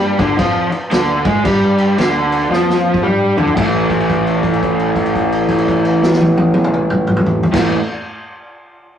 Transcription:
Already playing: fingered electric bass G2, overdriven electric guitar G3
0.19 fingered electric bass D2, overdriven electric guitar D3, kick, crash
0.39 fingered electric bass F2, overdriven electric guitar F3, kick, crash
0.72 muted overdriven electric guitar stroke, muted fingered electric bass stroke, crash
0.91 fingered electric bass D2, overdriven electric guitar D3, snare, crash
1.25 fingered electric bass G#2, overdriven electric guitar G#3, kick, crash
1.45 fingered electric bass G2, overdriven electric guitar G3, kick, crash
1.78 crash
1.98 fingered electric bass D2, overdriven electric guitar D3, snare, crash
2.32 crash
2.51 fingered electric bass F2, overdriven electric guitar F3, snare
2.70 snare
2.94 kick
3.03 fingered electric bass G2, overdriven electric guitar G3, mid tom
3.37 fingered electric bass D2, overdriven electric guitar D3, floor tom
3.47 floor tom
3.55 fingered electric bass A1, overdriven electric guitar A2 E3, kick, crash
3.60 overdriven electric guitar A3
3.90 kick, crash
4.00 crash
4.10 kick, crash
4.27 crash
4.43 kick, crash
4.53 crash
4.63 kick, crash
4.79 crash
4.96 kick, crash
5.06 crash
5.15 kick, crash
5.32 crash
5.49 kick, crash
5.58 crash
5.68 kick, crash
5.85 crash
6.03 snare
6.13 snare
6.21 high tom
6.37 high tom
6.54 high tom
6.64 mid tom
6.74 mid tom
6.90 mid tom
7.07 mid tom
7.17 mid tom
7.26 floor tom
7.43 floor tom
7.52 fingered electric bass A1, overdriven electric guitar A2 E3, kick, snare, crash
7.56 overdriven electric guitar A3

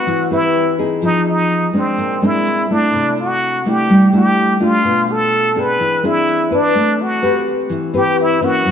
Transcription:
Already playing: nylon-string guitar C4 B4, muted trumpet F#4
0.07 nylon-string guitar E3, shaker
0.31 nylon-string guitar C4 G4 B4, muted trumpet E4, shaker
0.54 shaker
0.78 nylon-string guitar C4 D#4 G#4, shaker
1.02 nylon-string guitar F3, muted trumpet D#4, shaker
1.25 shaker
1.29 muted trumpet D#4
1.49 shaker
1.73 nylon-string guitar G#3 C4 D4, shaker
1.78 muted trumpet C4
1.97 nylon-string guitar A#2, shaker
2.21 nylon-string guitar G#3 C4 D4, shaker
2.25 muted trumpet E4
2.45 shaker
2.69 nylon-string guitar A3 D4 E4, muted trumpet D4, shaker
2.92 nylon-string guitar C3, shaker
3.17 muted trumpet F#4, shaker
3.41 shaker
3.65 nylon-string guitar A3 D4 E4, muted trumpet G4, shaker
3.89 nylon-string guitar G3, shaker
4.13 nylon-string guitar A3 D4 E4, shaker
4.17 muted trumpet G4
4.36 shaker
4.60 nylon-string guitar A3 D4 F4, muted trumpet F4, shaker
4.83 nylon-string guitar B2, shaker
5.07 shaker
5.11 muted trumpet A4
5.31 shaker
5.56 nylon-string guitar C4 D4 G#4, shaker
5.60 muted trumpet B4
5.80 nylon-string guitar E3, shaker
6.03 nylon-string guitar C4 D4 G#4, muted trumpet E4, shaker
6.27 shaker
6.51 nylon-string guitar C4 B4, muted trumpet D4, shaker
6.74 nylon-string guitar A3, shaker
6.98 muted trumpet F#4, shaker
7.22 nylon-string guitar C4 G4 B4, shaker
7.47 shaker
7.69 nylon-string guitar E3, shaker
7.93 nylon-string guitar C4 G4 B4, shaker
7.98 muted trumpet G4
8.17 muted trumpet E4, shaker
8.41 nylon-string guitar E3 A#3 C#4, muted trumpet F#4, shaker
8.65 nylon-string guitar F#2, shaker

